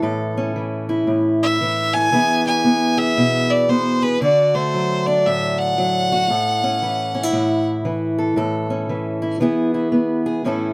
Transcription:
Already playing: E3
0.02 A2 A4
0.37 C#4
0.56 E3
0.89 E4
1.07 A2
1.43 E5
1.61 E3
1.94 A4 G#5
2.12 E3 B3 E4 G#4
2.46 E4 G#5
2.64 B3
2.97 G#4 E5
3.17 B2
3.50 D5
3.69 B3 C5
4.02 G#4 B4
4.21 D3 F#4 D5
4.54 A3 C5
4.74 F#3
5.06 D4 D5
5.26 A2 E5
5.58 F#5
5.78 F#3
6.12 F#4
6.30 A2 A4
6.64 C#4
6.82 E3
7.15 C#4
7.23 E4
7.32 A2
7.85 E3
8.18 A4
8.36 A2 A4
8.70 C#4
8.89 E3
9.22 E4
9.40 E3 B3 E4 G#4
9.74 E4
9.92 B3
10.26 G#4
10.44 A2 E3 C#4 E4 A4

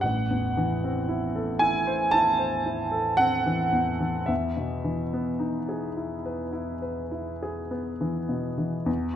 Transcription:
0.01 A1 F#5
0.30 E2
0.57 E3
0.84 C4
1.08 E4
1.36 A4
1.59 E4 G#5
1.87 C5
2.11 E4 A5
2.39 C5
2.66 E4
2.92 A4
3.17 C4 F#5
3.46 E3
3.72 E2
4.00 E3
4.26 E2 E5
4.57 B2
4.84 E3
5.13 B3
5.39 D#4
5.69 G#4
5.97 E4
6.26 B4
6.53 E4
6.82 B4
7.11 E4
7.43 G#4
7.71 B3
8.01 E3
8.29 B2
8.58 E3
8.86 E2

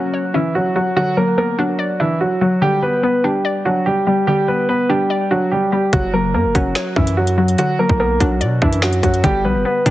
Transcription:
Already playing: C#3 F#3 A#3 C#4 F#4
0.14 C#5
0.34 E3 C#4 E4
0.55 F#3 F#4
0.75 F#3 F#4
0.96 D3 F#3 F#4
1.17 F#3 A#3 A#4
1.38 A#3 B3 A#4
1.58 F#3 D4 F#4
1.79 D5
2.00 E3 D4 E4
2.21 F#3 F#4
2.41 F#3 F#4
2.62 D3 G3 G4
2.82 G3 B3 B4
3.03 B3 B4
3.24 G3 D4 G4
3.45 D5
3.65 F#3 D4 F#4
3.86 G3 G4
4.07 G3 G4
4.27 D3 G3 G4
4.48 G3 B3 B4
4.69 B3 B4
4.89 G3 D4 G4
5.10 D5
5.31 F#3 D4 F#4
5.52 G3 G4
5.72 G3 G4
5.93 F#1 C#3 F#3 F#4, kick, closed hi-hat
6.14 F#3 A#3 A#4
6.34 F#2 A#3 A#4
6.45 F#1
6.55 F#1 F#3 C#4 F#4, kick, closed hi-hat
6.75 C#5, finger snap, snare, closed hi-hat
6.96 F#2 E3 C#4 E4, kick
7.07 closed hi-hat
7.17 F#3 F#4
7.27 closed hi-hat
7.38 F#3 F#4
7.48 closed hi-hat
7.58 D3 F#3 F#4, closed hi-hat
7.79 F#3 A#3 A#4
7.89 B1, kick
8.00 A#3 B3 A#4
8.20 B1 F#3 D4 F#4, kick, closed hi-hat
8.41 B2 D5, closed hi-hat
8.62 F#2 E3 D4 E4, kick
8.73 closed hi-hat
8.82 F#3 F#4, finger snap, snare
8.93 closed hi-hat
9.03 F#2 F#3 F#4, kick, closed hi-hat
9.14 closed hi-hat
9.23 G1 D3 G3 G4, kick, closed hi-hat
9.45 B1 G3 B3 B4
9.55 G1
9.65 B3 B4
9.86 G1 G3 D4 G4, kick, closed hi-hat

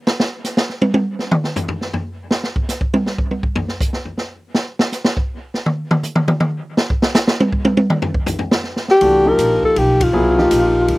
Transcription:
0.07 snare
0.20 snare
0.44 snare, hi-hat pedal
0.57 snare
0.69 snare
0.82 high tom
0.94 high tom
1.19 snare
1.31 mid tom
1.44 snare
1.56 floor tom, hi-hat pedal
1.68 floor tom
1.81 snare
1.93 floor tom
2.31 snare
2.43 snare
2.56 kick
2.69 snare, hi-hat pedal
2.81 kick
2.94 high tom
3.06 snare
3.18 kick
3.31 high tom
3.43 kick
3.55 floor tom
3.68 snare
3.81 kick, hi-hat pedal
3.93 snare
4.05 floor tom
4.18 snare
4.55 snare
4.79 snare
4.92 snare, hi-hat pedal
5.05 snare
5.17 kick
5.54 snare
5.66 mid tom
5.91 mid tom
6.03 hi-hat pedal, mid tom
6.16 mid tom
6.28 mid tom
6.40 mid tom
6.77 snare
6.90 kick
7.02 snare
7.15 snare, hi-hat pedal
7.27 snare
7.40 high tom
7.52 kick
7.65 high tom
7.77 high tom
7.90 mid tom
8.02 floor tom
8.14 kick
8.26 floor tom, hi-hat pedal
8.39 floor tom
8.51 snare
8.64 snare
8.76 snare
8.88 G4, snare
9.01 C2 E3 A3 D4 F#4, ride
9.26 F3 A#3 D#4 G4 A#4
9.38 A#1, hi-hat pedal, ride
9.63 A4, muted upright bass stroke, kick
9.76 B1 G4, ride
10.01 F4, kick, ride
10.13 C2 F#3 B3 E4 G#4
10.38 F3 A#3 D#4 G4, snare
10.51 A#1, hi-hat pedal, ride
10.88 D2, ride

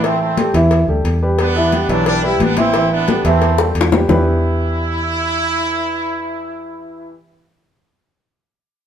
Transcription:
Already playing: A2
0.03 E3 A3 C4 E4 E5, cowbell, high conga
0.21 A3 C4, high conga
0.37 G3 G4 A4, cowbell, high conga
0.54 E2 E3 E4 E5, cowbell, high conga
0.71 cowbell, high conga
0.87 D2 G3 G4 A4, high conga
1.04 E2, cowbell, high conga
1.22 G3 G4 B4
1.38 B3 D4, cowbell, high conga
1.56 E3 E4 E5, high conga
1.72 G3 G4 B4, cowbell, high conga
1.89 B1 E3 F#3 D4 E4 E5, cowbell, high conga
2.06 G3 D4, cowbell, high conga
2.23 G3 E4 G4 B4, high conga
2.40 A1 B3 D4, cowbell, high conga
2.57 E3 C4 E4 E5, cowbell, high conga
2.74 E3 E4 E5, cowbell, high conga
2.92 B3 D4, high conga
3.08 G3 G4 A4, cowbell, high conga
3.24 E2 E3 A3 C4 E4 E5, cowbell, high conga
3.42 cowbell, high conga
3.58 G3 G4 A4, high bongo, high conga
3.75 E2, cowbell, high conga
3.81 low bongo
3.92 G3 G4 B4, low bongo, high conga
4.09 E2 E3 B3 D4 E4 G4 B4, low bongo, low conga

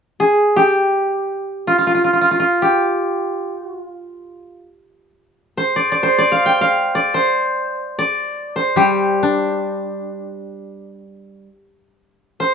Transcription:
0.20 G#4
0.56 G4
1.67 F4
1.78 F4
1.87 F4
1.95 F4
2.04 F4
2.13 F4
2.21 F4
2.31 F4
2.40 F4
2.62 G4
3.62 F#4
3.86 F4
5.57 C5
5.76 D5
5.92 D5
6.03 C5
6.18 D5
6.32 F5
6.46 G5
6.61 F5
6.95 D5
7.14 C5
7.99 D5
8.56 C5
8.76 G3 G4
9.23 D4
12.40 C5

